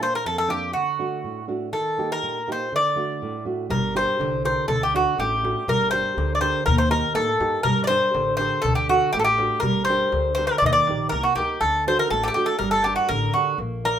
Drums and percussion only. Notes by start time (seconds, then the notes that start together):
3.72 darbuka dum
3.96 darbuka tek
4.21 darbuka tek
4.33 darbuka tek
4.45 darbuka tek
4.70 darbuka dum
4.95 darbuka tek
5.19 darbuka tek
5.32 darbuka tek
5.45 darbuka tek
5.68 darbuka dum
6.18 darbuka tek
6.31 darbuka tek
6.42 darbuka tek
6.67 darbuka dum
6.91 darbuka tek
7.16 darbuka tek
7.29 darbuka tek
7.41 darbuka tek
7.65 darbuka dum
7.90 darbuka tek
8.15 darbuka tek
8.28 darbuka tek
8.41 darbuka tek
8.65 darbuka dum
8.90 darbuka tek
9.14 darbuka tek
9.38 darbuka tek
9.63 darbuka dum
9.87 darbuka tek
10.12 darbuka tek
10.25 darbuka tek
10.38 darbuka tek
10.62 darbuka dum
10.75 darbuka tek
10.87 darbuka tek
11.12 darbuka tek
11.38 darbuka tek
11.49 darbuka tek